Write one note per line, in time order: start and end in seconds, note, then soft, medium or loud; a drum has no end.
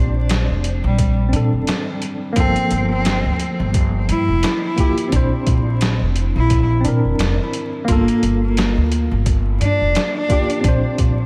0.00 0.46 A#1 medium
0.00 1.27 C4 medium
0.00 1.29 D4 medium
0.00 1.31 C5 medium
0.29 snare loud
0.29 closed hi-hat medium
0.49 0.79 F1 medium
0.64 closed hi-hat medium
0.84 1.30 A#1 loud
0.84 1.15 G3 medium
0.98 kick loud
0.98 closed hi-hat medium
1.28 2.31 C4 medium
1.28 2.33 D4 medium
1.33 1.50 A#2 loud
1.33 2.34 A4 medium
1.33 closed hi-hat medium
1.53 1.66 F1 medium
1.67 snare loud
1.67 closed hi-hat medium
2.02 closed hi-hat medium
2.33 2.54 G1 medium
2.33 4.74 F3 medium
2.33 4.72 A#3 medium
2.33 kick medium
2.33 closed hi-hat medium
2.37 2.85 C4 loud
2.37 4.76 A4 loud
2.56 closed hi-hat soft
2.71 3.21 G1 medium
2.71 closed hi-hat medium
2.91 3.36 C4 medium
3.05 snare loud
3.05 closed hi-hat medium
3.25 3.55 D2 medium
3.40 closed hi-hat medium
3.60 4.06 G1 loud
3.74 kick loud
3.74 closed hi-hat medium
4.09 4.26 G2 loud
4.09 4.58 E4 loud
4.09 closed hi-hat medium
4.28 4.41 F1 medium
4.43 snare loud
4.43 closed hi-hat medium
4.65 5.08 E4 medium
4.76 5.08 A#3 medium
4.76 5.09 F4 medium
4.76 5.10 G4 medium
4.76 kick loud
4.76 closed hi-hat medium
4.98 closed hi-hat soft
5.09 5.30 A#1 medium
5.09 6.79 C4 medium
5.09 6.81 D4 medium
5.09 kick loud
5.09 closed hi-hat medium
5.16 6.83 C5 medium
5.47 5.97 A#1 medium
5.47 kick medium
5.47 closed hi-hat medium
5.81 snare loud
5.81 closed hi-hat medium
6.01 6.31 F1 medium
6.16 closed hi-hat medium
6.36 6.82 A#1 medium
6.36 6.67 E4 medium
6.50 kick loud
6.50 closed hi-hat medium
6.81 7.82 C4 medium
6.81 7.84 D4 medium
6.85 7.02 A#2 medium
6.85 7.86 A#4 medium
6.85 closed hi-hat medium
7.05 7.17 F1 medium
7.19 7.36 F1 medium
7.19 snare loud
7.19 closed hi-hat medium
7.54 closed hi-hat medium
7.85 8.06 G1 medium
7.85 10.24 A#3 medium
7.85 10.26 F4 medium
7.85 kick loud
7.85 closed hi-hat medium
7.89 8.37 A#3 loud
7.89 10.28 A4 loud
8.08 closed hi-hat soft
8.22 8.73 G1 medium
8.22 closed hi-hat medium
8.44 8.88 A#3 medium
8.57 snare loud
8.57 closed hi-hat medium
8.77 9.07 D2 medium
8.92 closed hi-hat medium
9.11 9.58 G1 loud
9.26 kick loud
9.26 closed hi-hat medium
9.61 9.78 G2 loud
9.61 10.09 D4 medium
9.61 closed hi-hat medium
9.81 9.93 F1 medium
9.95 snare loud
9.95 closed hi-hat medium
10.16 10.60 D4 medium
10.28 10.60 A#3 medium
10.28 10.61 F4 medium
10.28 10.62 G4 medium
10.28 kick medium
10.28 closed hi-hat medium
10.50 closed hi-hat soft
10.61 10.81 A#1 loud
10.61 11.26 C4 medium
10.61 11.26 D4 medium
10.61 kick loud
10.61 closed hi-hat medium
10.68 11.26 C5 medium
10.98 11.26 A#1 medium
10.98 kick medium
10.98 closed hi-hat medium